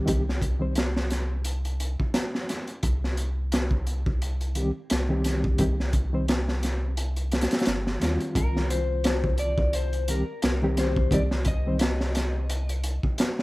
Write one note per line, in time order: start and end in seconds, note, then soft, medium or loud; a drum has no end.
0.06 1.96 C2 medium
0.06 0.20 D#3 medium
0.06 0.21 G3 medium
0.06 0.21 C4 medium
0.06 0.22 G4 loud
0.06 kick loud
0.06 closed hi-hat medium
0.29 snare soft
0.42 kick medium
0.42 closed hi-hat medium
0.60 0.71 D#3 medium
0.60 0.72 G3 medium
0.60 0.72 C4 medium
0.60 0.72 C5 loud
0.75 snare medium
0.75 closed hi-hat medium
0.96 snare medium
1.10 snare soft
1.10 closed hi-hat medium
1.45 closed hi-hat medium
1.65 closed hi-hat soft
1.80 closed hi-hat medium
2.00 kick medium
2.14 snare loud
2.14 closed hi-hat medium
2.35 snare soft
2.49 snare soft
2.49 closed hi-hat medium
2.67 closed hi-hat soft
2.83 4.72 C2 loud
2.83 kick loud
2.83 closed hi-hat medium
3.04 snare soft
3.17 closed hi-hat medium
3.52 snare loud
3.52 closed hi-hat medium
3.71 kick medium
3.87 closed hi-hat medium
4.06 kick loud
4.22 closed hi-hat medium
4.41 closed hi-hat soft
4.55 4.69 D#3 medium
4.55 4.70 G3 medium
4.55 4.70 C4 medium
4.55 4.70 G4 medium
4.55 closed hi-hat medium
4.90 5.57 C2 loud
4.90 snare loud
4.90 closed hi-hat medium
5.09 5.56 D#3 medium
5.09 5.56 G3 medium
5.09 5.56 C4 medium
5.09 5.57 G4 loud
5.24 snare soft
5.24 closed hi-hat medium
5.44 kick loud
5.58 7.48 C2 loud
5.58 5.73 D#3 medium
5.58 5.73 G3 medium
5.58 5.73 C4 medium
5.58 5.74 G4 medium
5.58 kick loud
5.58 closed hi-hat medium
5.80 snare soft
5.93 kick medium
5.93 closed hi-hat medium
6.13 6.24 D#3 medium
6.13 6.24 G3 medium
6.13 6.24 C4 medium
6.13 6.25 C5 loud
6.28 snare loud
6.28 closed hi-hat medium
6.48 snare soft
6.63 snare soft
6.63 closed hi-hat medium
6.97 closed hi-hat medium
7.16 closed hi-hat soft
7.31 snare medium
7.31 closed hi-hat medium
7.41 snare medium
7.41 closed hi-hat medium
7.51 snare medium
7.51 closed hi-hat medium
7.59 snare medium
7.59 closed hi-hat medium
7.65 7.98 G1 loud
7.65 snare loud
7.65 closed hi-hat medium
7.87 snare medium
8.00 8.18 D#2 medium
8.00 10.04 D#3 medium
8.00 10.05 G3 medium
8.00 10.05 C4 medium
8.00 snare medium
8.00 closed hi-hat medium
8.04 10.06 F4 medium
8.20 closed hi-hat soft
8.35 10.24 C2 loud
8.35 8.70 A#4 medium
8.35 kick loud
8.35 closed hi-hat medium
8.57 snare soft
8.70 9.39 C5 medium
8.70 closed hi-hat medium
9.04 snare loud
9.04 closed hi-hat medium
9.24 kick medium
9.38 9.75 D5 medium
9.38 closed hi-hat medium
9.58 kick loud
9.73 10.10 C5 medium
9.73 closed hi-hat medium
9.93 closed hi-hat soft
10.08 10.22 D#3 medium
10.08 10.22 G3 medium
10.08 10.22 C4 medium
10.08 10.23 G4 medium
10.08 10.43 A#4 medium
10.08 closed hi-hat medium
10.42 11.09 C2 loud
10.42 10.78 A#4 medium
10.42 snare loud
10.42 closed hi-hat medium
10.62 11.08 D#3 medium
10.62 11.09 G3 medium
10.62 11.09 C4 medium
10.62 11.09 G4 loud
10.77 11.13 C5 medium
10.77 snare soft
10.77 closed hi-hat medium
10.96 kick medium
11.11 13.00 C2 medium
11.11 11.25 D#3 medium
11.11 11.26 G3 medium
11.11 11.26 C4 medium
11.11 11.26 G4 loud
11.11 11.22 D5 loud
11.11 kick loud
11.11 closed hi-hat medium
11.31 snare soft
11.45 12.81 D#5 loud
11.45 kick loud
11.45 closed hi-hat medium
11.66 11.76 D#3 medium
11.66 11.76 G3 medium
11.66 11.77 C4 medium
11.66 11.77 C5 medium
11.79 snare loud
11.79 closed hi-hat medium
12.01 snare medium
12.15 snare medium
12.15 closed hi-hat medium
12.50 closed hi-hat medium
12.69 closed hi-hat soft
12.83 closed hi-hat medium
13.03 kick medium
13.18 snare loud
13.18 closed hi-hat medium
13.39 snare medium